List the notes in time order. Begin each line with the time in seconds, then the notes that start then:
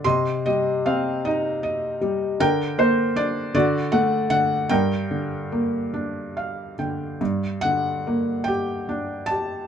0.04 C3 D#5 C6
0.46 G3 D#5
0.86 C4 F5
1.25 D#4 D#5
1.63 D#5
2.01 G3
2.40 D3 A#4 G5
2.78 A#3 C5
3.16 D4 D5
3.54 D3 F#4 D5
3.92 A3 F#5
4.30 D3 F#5
4.69 G2 A#4 G5
5.11 D3
5.52 A#3
5.94 D4
6.37 F5
6.79 D3 G5
7.21 G2
7.61 D3 F#5
8.07 A#3
8.44 G4 G5
8.89 D4
9.26 A5
9.31 G4